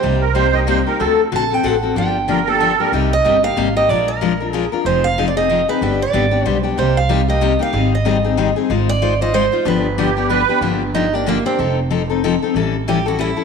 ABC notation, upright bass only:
X:1
M:3/4
L:1/8
Q:"Swing" 1/4=187
K:Gm
V:1 name="Upright bass" clef=bass
C,,6 | D,,2 B,,,2 A,,,2 | G,,,6 | [K:Cm] C,,2 G,,,2 A,,,2 |
B,,,6 | F,,,6 | G,,,2 A,,,2 =B,,,2 | C,,6 |
A,,,6 | A,,,6 | G,,,6 | [K:Gm] G,,,6 |
F,,,6 | A,,,6 |]